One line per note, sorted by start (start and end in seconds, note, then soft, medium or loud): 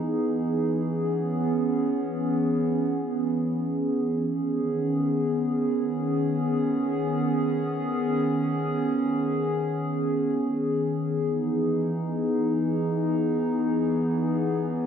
0.00 4.25 E3 medium
0.00 0.80 B3 medium
0.00 0.80 D#4 medium
0.00 4.25 G#4 medium
0.84 4.26 B3 medium
0.84 4.26 C#4 medium
4.29 11.16 D#3 medium
4.29 11.16 B3 medium
4.29 11.16 C#4 medium
4.29 14.61 G#4 medium
11.20 14.87 E3 medium
11.20 14.87 B3 medium
11.20 14.62 D#4 medium
14.65 14.87 C#4 medium
14.65 14.87 G#4 medium